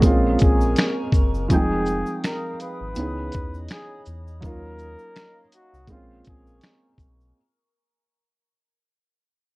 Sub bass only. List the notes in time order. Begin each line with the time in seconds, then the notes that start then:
0.02 A#1
0.42 A#1
1.13 F#1
1.50 F1
2.81 G#1
2.97 C#2
3.35 E2
4.07 E2
4.43 D#2
5.73 C2
5.88 A#1
6.27 A#1
6.98 B1